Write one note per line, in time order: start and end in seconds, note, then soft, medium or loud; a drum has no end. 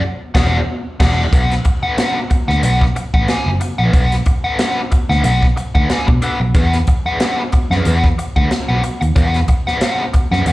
0.34 0.58 E1 medium
0.34 0.58 E4 medium
0.34 0.58 G#4 medium
0.34 0.58 D5 medium
0.34 0.57 F#5 loud
0.34 kick loud
0.34 snare loud
0.34 crash medium
1.00 1.23 E1 loud
1.00 1.24 E4 medium
1.00 1.23 G#4 medium
1.00 1.23 D5 loud
1.00 1.23 F#5 loud
1.00 kick loud
1.00 snare loud
1.00 crash medium
1.32 1.59 B1 medium
1.32 1.52 D4 medium
1.32 1.53 A4 medium
1.32 1.53 B4 medium
1.32 1.53 F#5 medium
1.32 kick loud
1.32 closed hi-hat medium
1.51 snare soft
1.51 closed hi-hat soft
1.65 muted overdriven electric guitar stroke soft
1.65 kick medium
1.65 closed hi-hat medium
1.83 1.96 D4 soft
1.83 1.96 A4 medium
1.83 1.96 B4 medium
1.83 1.96 F#5 medium
1.83 muted fingered electric bass stroke soft
1.97 2.17 D4 medium
1.97 2.18 A4 medium
1.97 2.18 B4 medium
1.97 2.18 F#5 medium
1.97 snare loud
1.97 closed hi-hat medium
2.30 muted overdriven electric guitar stroke soft
2.30 muted fingered electric bass stroke soft
2.30 kick medium
2.30 closed hi-hat medium
2.48 2.60 D2 medium
2.48 2.62 D4 soft
2.48 2.61 A4 medium
2.48 2.61 B4 medium
2.48 2.61 F#5 medium
2.48 snare soft
2.63 2.89 B1 medium
2.63 2.83 D4 medium
2.63 2.83 A4 medium
2.63 2.83 B4 medium
2.63 2.84 F#5 medium
2.63 closed hi-hat loud
2.81 kick medium
2.81 snare soft
2.96 muted overdriven electric guitar stroke soft
2.96 closed hi-hat medium
3.14 3.25 A1 medium
3.14 3.27 D4 soft
3.14 3.27 A4 soft
3.14 3.27 B4 medium
3.14 3.26 F#5 medium
3.14 kick medium
3.28 3.48 D4 medium
3.28 3.48 A4 medium
3.28 3.48 B4 medium
3.28 3.49 G#5 medium
3.28 snare medium
3.28 closed hi-hat medium
3.46 3.58 F#1 loud
3.60 muted overdriven electric guitar stroke soft
3.60 closed hi-hat medium
3.78 3.90 A#1 medium
3.78 3.91 D4 medium
3.78 3.92 A4 medium
3.78 3.92 B4 medium
3.78 3.91 F#5 medium
3.93 4.20 B1 medium
3.93 4.13 D4 medium
3.93 4.13 A4 medium
3.93 4.14 B4 medium
3.93 4.14 F#5 medium
3.93 kick loud
3.93 closed hi-hat medium
4.12 snare soft
4.12 closed hi-hat soft
4.26 muted overdriven electric guitar stroke soft
4.26 kick medium
4.26 closed hi-hat medium
4.44 4.57 D4 medium
4.44 4.57 A4 medium
4.44 4.57 B4 medium
4.44 4.57 F#5 medium
4.44 muted fingered electric bass stroke soft
4.58 4.79 D4 medium
4.58 4.79 A4 medium
4.58 4.79 B4 loud
4.58 4.79 F#5 medium
4.58 snare loud
4.58 closed hi-hat medium
4.91 muted overdriven electric guitar stroke soft
4.91 muted fingered electric bass stroke soft
4.91 kick medium
4.91 closed hi-hat medium
5.09 5.21 D2 medium
5.09 5.22 D4 soft
5.09 5.23 A4 soft
5.09 5.22 B4 medium
5.09 5.22 F#5 medium
5.09 snare soft
5.23 5.50 B1 medium
5.23 5.44 D4 medium
5.23 5.44 A4 medium
5.23 5.44 B4 medium
5.23 5.45 F#5 loud
5.23 closed hi-hat medium
5.43 kick medium
5.43 snare soft
5.56 muted overdriven electric guitar stroke soft
5.56 closed hi-hat medium
5.75 5.87 D2 medium
5.75 5.88 D4 medium
5.75 5.88 A4 medium
5.75 5.88 B4 medium
5.75 5.87 F#5 medium
5.75 kick medium
5.89 6.09 D4 medium
5.89 6.08 A4 medium
5.89 6.08 B4 medium
5.89 6.07 G#5 medium
5.89 muted fingered electric bass stroke soft
5.89 snare medium
5.89 closed hi-hat medium
6.08 6.19 B2 loud
6.08 muted overdriven electric guitar stroke soft
6.08 kick medium
6.22 6.38 D4 medium
6.22 6.38 A4 medium
6.22 6.39 B4 medium
6.22 6.39 F#5 medium
6.22 closed hi-hat medium
6.40 6.52 B1 medium
6.40 muted overdriven electric guitar stroke soft
6.55 6.81 E2 medium
6.55 6.75 D4 medium
6.55 6.75 G#4 medium
6.55 6.75 B4 medium
6.55 6.75 F#5 medium
6.55 kick loud
6.55 closed hi-hat medium
6.73 snare soft
6.73 closed hi-hat soft
6.87 muted overdriven electric guitar stroke soft
6.87 kick medium
6.87 closed hi-hat medium
7.06 7.19 D4 medium
7.06 7.19 G#4 medium
7.06 7.19 B4 soft
7.06 7.18 F#5 medium
7.06 muted fingered electric bass stroke soft
7.20 7.40 D4 medium
7.20 7.40 G#4 medium
7.20 7.41 B4 medium
7.20 7.41 F#5 medium
7.20 snare loud
7.20 closed hi-hat medium
7.52 muted overdriven electric guitar stroke soft
7.52 muted fingered electric bass stroke soft
7.52 kick medium
7.52 closed hi-hat medium
7.70 7.82 F#2 medium
7.70 7.84 D4 soft
7.70 7.84 G#4 medium
7.70 7.84 B4 medium
7.70 7.84 F#5 medium
7.70 snare soft
7.85 8.11 E2 medium
7.85 8.05 D4 medium
7.85 8.06 G#4 medium
7.85 8.06 B4 medium
7.85 8.06 F#5 medium
7.85 closed hi-hat medium
8.04 kick medium
8.04 snare soft
8.18 muted overdriven electric guitar stroke soft
8.18 closed hi-hat medium
8.36 8.48 D2 medium
8.36 8.49 D4 medium
8.36 8.49 G#4 medium
8.36 8.49 B4 medium
8.36 8.49 F#5 medium
8.36 kick medium
8.50 muted overdriven electric guitar stroke soft
8.50 muted fingered electric bass stroke soft
8.50 snare medium
8.50 closed hi-hat medium
8.69 8.80 B1 medium
8.69 8.82 D4 medium
8.69 8.82 G#4 medium
8.69 8.83 B4 medium
8.69 8.83 F#5 medium
8.83 muted overdriven electric guitar stroke soft
8.83 closed hi-hat medium
9.01 9.13 D#2 medium
9.01 muted overdriven electric guitar stroke soft
9.01 closed hi-hat soft
9.16 9.42 E2 medium
9.16 9.37 D4 medium
9.16 9.38 G#4 medium
9.16 9.38 B4 medium
9.16 9.38 F#5 medium
9.16 kick loud
9.16 closed hi-hat loud
9.34 snare soft
9.34 closed hi-hat soft
9.48 muted overdriven electric guitar stroke soft
9.48 kick medium
9.48 closed hi-hat medium
9.67 9.80 D4 medium
9.67 9.80 G#4 medium
9.67 9.80 B4 medium
9.67 9.79 F#5 medium
9.67 muted fingered electric bass stroke soft
9.67 snare soft
9.81 10.03 D4 medium
9.81 10.03 G#4 medium
9.81 10.03 B4 medium
9.81 10.03 F#5 medium
9.81 snare loud
9.81 closed hi-hat medium
10.13 muted overdriven electric guitar stroke soft
10.13 muted fingered electric bass stroke soft
10.13 kick medium
10.13 closed hi-hat medium
10.31 10.43 F#2 medium
10.31 10.45 D4 soft
10.31 10.45 G#4 soft
10.31 10.45 B4 medium
10.31 10.44 F#5 medium
10.31 snare soft
10.46 10.53 E2 medium
10.46 10.53 D4 medium
10.46 10.53 G#4 medium
10.46 10.53 B4 medium
10.46 10.53 F#5 medium
10.46 closed hi-hat medium